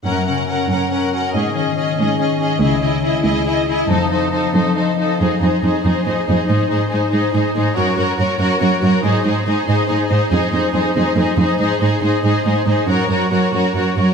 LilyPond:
<<
  \new Staff \with { instrumentName = "Violin section" } { \time 6/8 \key aes \mixolydian \tempo 4. = 94 ges''8 ges''8 ges''8 ges''8 ges''8 ges''8 | ees''8 ees''8 ees''8 ees''8 ees''8 ees''8 | ees''8 ees''8 ees''8 ees''8 ees''8 ees''8 | c''8 c''8 c''8 c''8 c''8 c''8 |
c''8 c''8 c''8 c''8 c''8 c''8 | c''8 c''8 c''8 c''8 c''8 c''8 | des''8 des''8 des''8 des''8 des''8 des''8 | c''8 c''8 c''8 c''8 c''8 c''8 |
c''8 c''8 c''8 c''8 c''8 c''8 | c''8 c''8 c''8 c''8 c''8 c''8 | des''8 des''8 des''8 des''8 des''8 des''8 | }
  \new Staff \with { instrumentName = "Violin section" } { \time 6/8 \key aes \mixolydian bes'8 bes'8 bes'8 bes'8 bes'8 bes'8 | aes'8 aes'8 aes'8 aes'8 aes'8 aes'8 | aes'8 aes'8 aes'8 aes'8 aes'8 aes'8 | a'8 a'8 a'8 a'8 a'8 a'8 |
aes'8 aes'8 aes'8 aes'8 aes'8 aes'8 | aes'8 aes'8 aes'8 aes'8 aes'8 aes'8 | bes'8 bes'8 bes'8 bes'8 bes'8 bes'8 | aes'8 aes'8 aes'8 aes'8 aes'8 aes'8 |
aes'8 aes'8 aes'8 aes'8 aes'8 aes'8 | aes'8 aes'8 aes'8 aes'8 aes'8 aes'8 | bes'8 bes'8 bes'8 bes'8 bes'8 bes'8 | }
  \new Staff \with { instrumentName = "Harp" } { \time 6/8 \key aes \mixolydian ges,8 des8 ges'8 bes'8 des''8 ges'8 | aes,8 ees8 ees'8 aes'8 des''8 ees'8 | des8 aes8 fes'8 aes'8 ees''8 fes'8 | f8 c'8 f'8 a'8 ees''8 f'8~ |
f'2. | r2. | r2. | r2. |
r2. | r2. | r2. | }
  \new Staff \with { instrumentName = "Viola section" } { \time 6/8 \key aes \mixolydian des'8 des'8 des'8 des'8 des'8 des'8 | des'8 des'8 des'8 des'8 des'8 des'8 | fes'8 fes'8 fes'8 fes'8 fes'8 fes'8 | ees'8 ees'8 ees'8 ees'8 ees'8 ees'8 |
ees'8 ees'8 ees'8 ees'8 ees'8 ees'8 | ees'8 ees'8 ees'8 ees'8 ees'8 ees'8 | ges'8 ges'8 ges'8 ges'8 ges'8 ges'8 | ees'8 ees'8 ees'8 ees'8 ees'8 ees'8 |
ees'8 ees'8 ees'8 ees'8 ees'8 ees'8 | ees'8 ees'8 ees'8 ees'8 ees'8 ees'8 | ges'8 ges'8 ges'8 ges'8 ges'8 ges'8 | }
  \new Staff \with { instrumentName = "Cello section" } { \clef bass \time 6/8 \key aes \mixolydian ges,4. ges,4. | aes,4. aes,4. | des,4. des,4. | f,4. f,4. |
f,8 f,8 f,8 f,8 f,8 f,8 | aes,8 aes,8 aes,8 aes,8 aes,8 aes,8 | ges,8 ges,8 ges,8 ges,8 ges,8 ges,8 | aes,8 aes,8 aes,8 aes,8 aes,8 aes,8 |
f,8 f,8 f,8 f,8 f,8 f,8 | aes,8 aes,8 aes,8 aes,8 aes,8 aes,8 | ges,8 ges,8 ges,8 ges,8 ges,8 ges,8 | }
>>